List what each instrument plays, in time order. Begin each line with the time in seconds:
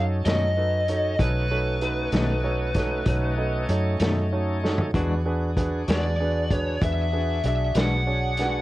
Already playing: fingered electric bass F#2, tonewheel organ C#4 D#4 A4, upright piano D#4 F#4 A4 C#5
0.25 fingered electric bass F#2, clean electric guitar B2 D#3 A3 C#4, upright piano D#4 F#4 A4 C#5, lead electric guitar D#5, snare, closed hi-hat
0.57 upright piano D#4 F#4 A4 B4
0.88 upright piano D#4 F#4 A4 C#5, closed hi-hat
1.18 fingered electric bass B1, tonewheel organ A3 C#4 D#4, upright piano D#4 F#4 A4 C#5, lead electric guitar B4, kick, closed hi-hat
1.50 upright piano D#4 F#4 A4 C#5
1.81 upright piano D#4 F#4 A4 B4, closed hi-hat
2.12 fingered electric bass B1, clean electric guitar B2 D#3 A3 C#4, upright piano D#4 F#4 A4 D#5, snare, closed hi-hat
2.44 upright piano D#4 F#4 A4 C#5
2.74 upright piano D#4 F#4 A4 C#5, kick, snare, closed hi-hat
3.06 fingered electric bass B1, upright piano D#4 F#4 A4 C#5, kick, closed hi-hat
3.38 upright piano D#4 F#4 A4 D#5
3.69 fingered electric bass F#2, upright piano D#4 F#4 A4 C#5, closed hi-hat
4.00 fingered electric bass F#2, clean electric guitar B2 D#3 A3 C#4, upright piano D#4 F#4 A4 C#5, snare, closed hi-hat
4.33 upright piano D#4 F#4 A4 C#5
4.63 upright piano D#4 F#4 A4 C#5, snare
4.78 floor tom
4.94 fingered electric bass E2, clean electric guitar E3 G#3 D4 F#4, upright piano D4 F#4 G#4 B4, tonewheel organ D4 F#4 G#4, kick, closed hi-hat
5.25 upright piano D4 F#4 G#4 B4
5.57 upright piano D4 F#4 G#4 B4, kick, closed hi-hat
5.88 fingered electric bass E2, clean electric guitar E3 G#3 D4 F#4, upright piano D4 F#4 G#4 B4, lead electric guitar D5, snare, closed hi-hat
6.20 upright piano D4 F#4 G#4 B4
6.50 upright piano D4 F#4 G#4 B4, lead electric guitar C#5, kick, closed hi-hat
6.81 fingered electric bass E2, upright piano D4 F#4 G#4 B4, lead electric guitar E5, kick, closed hi-hat
7.13 upright piano D4 F#4 G#4 B4
7.44 fingered electric bass B1, upright piano D4 F#4 G#4 D5, lead electric guitar E5, closed hi-hat
7.75 fingered electric bass B1, clean electric guitar E3 G#3 D4 F#4, upright piano D4 F#4 G#4 B4, lead electric guitar F#5, snare, closed hi-hat
8.07 upright piano D4 F#4 G#4 C#5
8.37 upright piano D4 F#4 G#4 B4, snare, closed hi-hat